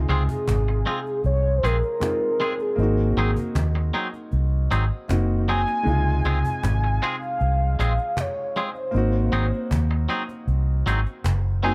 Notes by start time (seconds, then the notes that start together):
Already playing: C3 G#3 D#4 F4
0.09 C#2 G#3 C4 F4 G#4, cajon slap
0.29 cajon bass
0.48 G#1, cajon bass, cajon slap
0.68 muted clean electric guitar stroke
0.86 G#3 C4 F4 G#4, cajon slap
1.06 cajon slap
1.24 C2 C#5, cajon slap
1.57 C5
1.63 A#1 G#3 C4 F4 G#4 A#4, cajon slap
1.83 cajon slap
2.00 G#3 C4 D#4 F4, cajon bass, cajon slap
2.40 G#3 C4 F4 G#4, cajon slap
2.59 G#4, cajon slap
2.76 G#1 A#3 C4, cajon slap
2.80 D#4 F#4
3.17 G#1 F#3 C4 D#4 G#4, cajon slap
3.37 cajon bass
3.55 D#2, cajon bass, cajon slap
3.75 muted clean electric guitar stroke
3.94 F#3 C4 D#4 G#4, cajon slap
4.13 cajon slap
4.32 C2, cajon slap
4.71 G#1 F#3 C4 D#4 G#4, cajon slap
4.91 cajon slap
5.08 F#1 A#3 C4 D#4 F#4, cajon bass, cajon slap
5.48 F#3 C4 D#4 G#4 G#5, cajon slap
5.67 muted clean electric guitar stroke, cajon slap
5.83 C#2 C3 G#3 D#4, cajon slap
5.90 F4
6.24 C#2 G#3 C4 F4 G#4, cajon slap
6.45 cajon bass
6.63 G#1, cajon bass, cajon slap
6.84 muted clean electric guitar stroke
7.02 G#3 C4 F4 G#4 F5, cajon slap
7.22 cajon slap
7.40 C2, cajon slap
7.79 A#1 G#3 C4 F4 G#4, cajon slap
7.98 cajon slap
8.17 C#5, cajon bass, cajon slap
8.56 G#3 C4 F4 G#4 C5, cajon slap
8.75 cajon slap
8.91 G#1 A#3 C4, cajon slap
8.95 D#4 F#4
9.32 G#1 F#3 C4 D#4 G#4, cajon slap
9.53 cajon slap
9.71 D#2, cajon bass, cajon slap
9.91 muted clean electric guitar stroke
10.09 F#3 C4 D#4 G#4, cajon slap
10.29 cajon slap
10.47 C2, cajon slap
10.86 G#1 F#3 C4 D#4 G#4, cajon slap
11.06 cajon slap
11.24 F#1, cajon bass, cajon slap
11.62 F#3 A#3 C4 D#4 F#4 G#4 G#5, cajon slap